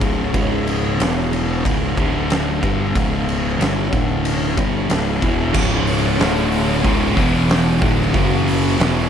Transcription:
Already playing: synth drone C#4 G#4 C#5
0.01 picked electric bass C#1, distorted electric guitar C#2 G#2 C#3, kick, ride
0.34 picked electric bass C#1, distorted electric guitar C#2 G#2 C#3, kick, ride
0.67 ride
0.99 picked electric bass E1, distorted electric guitar E2 B2 E3, snare, ride
1.33 ride
1.65 picked electric bass C#1, distorted electric guitar C#2 G#2 C#3, kick, ride
1.97 picked electric bass D1, distorted electric guitar D2 A2 D3, kick, ride
2.30 snare, ride
2.61 picked electric bass G1, distorted electric guitar G2 D3 G3, synth drone C#4 E4 C#5, kick, ride
2.95 picked electric bass C#1, distorted electric guitar C#2 G#2 C#3, kick, ride
3.29 ride
3.60 picked electric bass G1, distorted electric guitar G2 D3 G3, snare, ride
3.92 picked electric bass D1, distorted electric guitar D2 A2 D3, kick, ride
4.25 ride
4.57 picked electric bass G1, distorted electric guitar G2 D3 G3, kick, ride
4.88 picked electric bass C#1, distorted electric guitar C#2 G#2 C#3, snare, ride
5.21 picked electric bass E1, distorted electric guitar E2 B2 E3, kick, ride
5.53 picked electric bass C#1, distorted electric guitar C#2 G#2 C#3, kick, crash
5.87 open hi-hat
6.19 picked electric bass D1, distorted electric guitar D2 A2 D3, snare, open hi-hat
6.52 open hi-hat
6.84 picked electric bass C#1, distorted electric guitar C#2 G#2 C#3, kick, open hi-hat
7.16 picked electric bass E1, distorted electric guitar E2 B2 E3, kick, open hi-hat
7.49 snare, open hi-hat
7.81 picked electric bass D1, distorted electric guitar D2 A2 D3, kick, open hi-hat
8.01 snare
8.13 picked electric bass F#1, distorted electric guitar F#2 C#3 F#3, kick, open hi-hat
8.47 open hi-hat
8.79 picked electric bass E1, distorted electric guitar E2 B2 E3, snare, open hi-hat

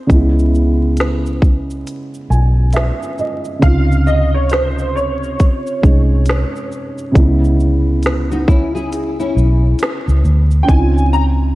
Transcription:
0.07 fingered electric bass C#2, felt piano C#3 G#3, kick, closed hi-hat, shaker
0.11 felt piano B3 E4
0.39 shaker
0.55 shaker
0.97 snare, closed hi-hat, shaker
1.26 shaker
1.42 kick, shaker
1.71 shaker
1.87 closed hi-hat, shaker
2.14 shaker
2.30 fingered electric bass B1, felt piano G#5, shaker
2.73 felt piano E5, snare, closed hi-hat, shaker
3.03 shaker
3.19 felt piano D#5, shaker
3.45 shaker
3.59 fingered electric bass C#2, felt piano C3 C#3, upright piano F5, kick, closed hi-hat, shaker
3.63 felt piano D#4 F4
3.92 shaker
4.07 upright piano D#5, shaker
4.34 upright piano C#5
4.50 upright piano C5, snare, closed hi-hat, shaker
4.79 shaker
4.96 upright piano C#5, shaker
5.24 shaker
5.40 kick, closed hi-hat, shaker
5.67 shaker
5.82 fingered electric bass C2, felt piano G#3 C#4 D#4 G#4, kick, shaker
6.26 snare, closed hi-hat, shaker
6.56 shaker
6.72 shaker
6.98 shaker
7.12 fingered electric bass C#2, felt piano C3 G#3, kick
7.16 felt piano C#3 B3 E4, closed hi-hat, shaker
7.45 shaker
7.60 shaker
8.03 snare, closed hi-hat, shaker
8.31 nylon-string guitar D#4 F#4, shaker
8.48 nylon-string guitar C#4 E4, kick, shaker
8.75 nylon-string guitar E4 G#4, shaker
8.93 closed hi-hat, shaker
9.20 nylon-string guitar C#4 E4, shaker
9.36 fingered electric bass B1, shaker
9.79 snare, closed hi-hat, shaker
10.08 fingered electric bass C#2, shaker
10.25 fingered electric bass D2, shaker
10.51 shaker
10.63 felt piano C4 C#4, upright piano G5
10.69 fingered electric bass C#2, felt piano D#4 E4, upright piano G#5, kick, closed hi-hat, shaker
10.78 felt piano F4
10.98 shaker
11.13 upright piano A#5, shaker

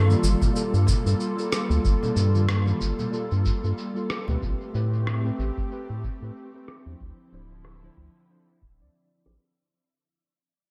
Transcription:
Already playing: analog synth bass G2, analog synth pad G3 A#3 F4 A4
0.07 tine electric piano G3 A#3 F4 A4, high conga, shaker
0.23 analog synth bass G1, high conga, shaker
0.41 kick, low conga, shaker
0.54 tine electric piano G3 A#3 F4 A4, shaker
0.74 analog synth bass G2, shaker
0.87 kick, low conga, shaker
1.04 analog synth bass G2, tine electric piano G3 A#3 F4 A4, shaker
1.20 shaker
1.37 tine electric piano G3 A#3 F4 A4, shaker
1.52 cross-stick, shaker
1.69 analog synth bass D2, tine electric piano G3 A#3 F4 A4, shaker
1.84 analog synth bass G1, kick, shaker
2.03 low conga, shaker
2.15 analog synth bass G2, tine electric piano G3 A#3 F4 A4, shaker
2.35 high conga, shaker
2.49 cross-stick, shaker
2.65 tine electric piano G3 A#3 F4 A4, high conga, shaker
2.81 analog synth bass G1, kick, high conga, shaker
2.99 low conga, shaker
3.11 tine electric piano G3 A#3 F4 A4, shaker
3.31 analog synth bass G2, shaker
3.45 kick, shaker
3.62 analog synth bass G2, tine electric piano G3 A#3 F4 A4, shaker
3.78 shaker
3.94 tine electric piano G3 A#3 F4 A4, shaker
4.10 cross-stick, shaker
4.27 analog synth bass D2, tine electric piano A3 C4 G4 B4, low conga, shaker
4.42 analog synth bass A1, analog synth pad A3 C4 G4, kick, shaker
4.61 shaker
4.73 analog synth bass A2, tine electric piano A3 C4 G4 B4, shaker
4.93 shaker
5.07 cross-stick, shaker
5.23 tine electric piano A3 C4 G4 B4, shaker
5.39 analog synth bass A1, shaker
5.57 kick, shaker
5.69 tine electric piano A3 C4 G4 B4, shaker
5.90 analog synth bass A2, shaker
6.04 kick, shaker
6.21 analog synth bass A2, tine electric piano A3 C4 G4 B4, shaker
6.36 shaker
6.53 tine electric piano A3 C4 G4 B4, shaker
6.68 cross-stick, shaker
6.86 analog synth bass E2, tine electric piano F3 D4 E4 C5, shaker
7.00 analog synth bass D2, analog synth pad D3 F3 E4, kick, shaker
7.19 shaker
7.32 analog synth bass D1, tine electric piano F3 D4 E4 C5, shaker
7.65 cross-stick
7.83 tine electric piano F3 D4 E4 C5
7.97 analog synth bass D2, kick, shaker
8.28 tine electric piano F3 D4 E4 C5
8.62 analog synth bass D1, kick, shaker
8.79 analog synth bass D2, tine electric piano F3 D4 E4 D5
9.25 analog synth bass A1, tine electric piano F3 D4 E4 C5, cross-stick

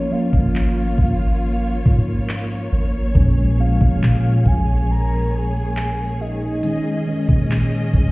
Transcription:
Already playing: tine electric piano F3 A#3 C#4, string section A#3 F4 C#5, soft synth lead C#5
0.10 tine electric piano F3 A#3 C#4, soft synth lead F5
0.33 808-style bass G#1, kick
0.56 clap
0.98 808-style bass G#1, kick
1.86 808-style bass G#2, kick
2.29 clap
2.72 808-style bass G#1
3.14 808-style bass A#1, tine electric piano A#2 F3 G#3 C#4, string section G#4, kick
3.58 tine electric piano A#2 F3 G#3 C#4, soft synth lead F5
3.81 808-style bass A#1, kick
4.02 808-style bass A#2, clap
4.46 808-style bass A#1, soft synth lead G#5, kick
4.91 soft synth lead A#5
5.34 soft synth lead G#5
5.77 clap
6.21 soft synth lead D#5
6.63 tine electric piano D#3 G#3 C#4, string section C#4 D#5, closed hi-hat
7.07 tine electric piano D#3 G#3 C#4
7.29 808-style bass A#2, kick
7.51 clap, closed hi-hat
7.94 808-style bass A#1, kick

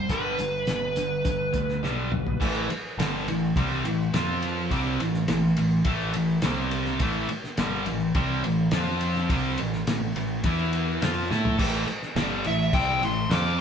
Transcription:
Already playing: lead electric guitar C5
0.09 picked electric bass G1, distorted electric guitar G2 D3 G3, lead electric guitar B4, kick, closed hi-hat
0.39 picked electric bass G1, distorted electric guitar G2 D3, closed hi-hat
0.67 picked electric bass G1, distorted electric guitar G2 D3, snare, closed hi-hat
0.96 picked electric bass G1, distorted electric guitar G2 D3, closed hi-hat
1.25 picked electric bass G1, distorted electric guitar G2 D3, kick, closed hi-hat
1.53 picked electric bass D2, distorted electric guitar G2 D3, kick, closed hi-hat
1.69 snare
1.83 picked electric bass B1, distorted electric guitar G2 D3 G3, snare
2.11 distorted electric guitar G2 D3, mid tom
2.27 floor tom
2.40 picked electric bass A1, distorted electric guitar A2 E3 A3, kick, crash
2.70 muted picked electric bass stroke, muted distorted electric guitar stroke, ride
2.98 picked electric bass G1, distorted electric guitar G2 D3 G3, snare, ride
3.27 picked electric bass A1, distorted electric guitar A2 E3, ride
3.56 picked electric bass C2, distorted electric guitar C3 G3 C4, kick, ride
3.85 picked electric bass A1, distorted electric guitar A2 E3, ride
4.13 picked electric bass F2, distorted electric guitar F3 C4 F4, snare, ride
4.42 ride
4.71 picked electric bass C2, distorted electric guitar C3 G3 C4, kick, ride
5.00 picked electric bass A1, distorted electric guitar A2 E3, ride
5.14 snare
5.28 picked electric bass A1, distorted electric guitar A2 E3, snare, ride
5.57 picked electric bass A1, distorted electric guitar A2 E3, ride
5.85 picked electric bass A1, distorted electric guitar A2 E3 A3, kick, ride
6.14 picked electric bass A1, distorted electric guitar A2 E3, ride
6.42 picked electric bass C2, distorted electric guitar C3 G3 C4, snare, ride
6.71 ride
6.85 snare
7.00 picked electric bass A1, distorted electric guitar A2 E3 A3, kick, ride
7.29 muted picked electric bass stroke, muted distorted electric guitar stroke, ride
7.44 snare
7.57 picked electric bass G1, distorted electric guitar G2 D3 G3, snare, ride
7.86 picked electric bass A1, distorted electric guitar A2 E3, ride
8.15 picked electric bass C2, distorted electric guitar C3 G3 C4, kick, ride
8.44 picked electric bass A1, distorted electric guitar A2 E3, ride
8.71 picked electric bass F2, distorted electric guitar F3 C4 F4, snare, ride
9.01 ride
9.15 snare
9.30 picked electric bass C2, distorted electric guitar C3 G3 C4, kick, ride
9.58 picked electric bass A1, distorted electric guitar A2 E3, ride
9.73 snare
9.87 picked electric bass A1, distorted electric guitar A2 E3, snare, ride
10.16 picked electric bass A1, distorted electric guitar A2 E3, ride
10.44 picked electric bass E2, distorted electric guitar E3 B3 E4, kick, ride
10.73 ride
11.02 picked electric bass F2, distorted electric guitar F3 C4 F4, snare, ride
11.30 picked electric bass A2, distorted electric guitar A3 E4 A4, snare
11.45 floor tom
11.58 picked electric bass A1, distorted electric guitar A2 E3 A3, kick, crash
11.87 muted picked electric bass stroke, muted distorted electric guitar stroke, crash
12.02 snare
12.15 picked electric bass G1, distorted electric guitar G2 D3 G3, snare, crash
12.44 picked electric bass A1, distorted electric guitar A2 E3, lead electric guitar E5, crash
12.73 picked electric bass C2, distorted electric guitar C3 G3 C4, lead electric guitar G5, kick, crash
13.01 picked electric bass A1, distorted electric guitar A2 E3, lead electric guitar C6, crash
13.30 picked electric bass F2, distorted electric guitar F3 C4 F4, lead electric guitar D6, snare, crash

